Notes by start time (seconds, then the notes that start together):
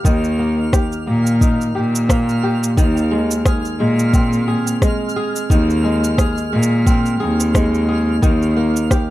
Already playing: A#3 D#4 G4 F6
0.04 D#2 D#3, kick, cabasa
0.24 cabasa
0.39 A#3
0.73 G4, kick, cross-stick, cabasa
0.92 cabasa
1.07 A#2 A#3
1.27 cabasa
1.41 D#4, kick, cabasa
1.61 cabasa
1.75 A#2 G4
1.95 cabasa
2.09 A#3, kick, cross-stick, cabasa
2.29 cabasa
2.43 G4
2.63 cabasa
2.77 D#2 D#3, kick, cabasa
2.97 cabasa
3.11 G#3
3.31 cabasa
3.45 G#4, kick, cross-stick, cabasa
3.65 cabasa
3.79 A#2 G#3
3.99 cabasa
4.13 C4, kick, cabasa
4.33 cabasa
4.48 G#4
4.67 cabasa
4.82 G#3, kick, cross-stick, cabasa
5.09 cabasa
5.16 G#4
5.36 cabasa
5.50 D#2 D#3, kick, cabasa
5.70 cabasa
5.84 G#3
6.04 cabasa
6.18 G#4, kick, cross-stick, cabasa
6.38 cabasa
6.53 A#2 G#3
6.63 cabasa
6.86 C4, kick, cabasa
7.06 cabasa
7.20 D#2 G#4
7.40 cross-stick, cabasa
7.55 G#3, kick, cross-stick, cabasa
7.74 cabasa
7.88 G#4
8.22 D#2 D#3, kick, cabasa
8.42 cabasa
8.57 A#3
8.76 cabasa
8.90 G4, kick, cross-stick, cabasa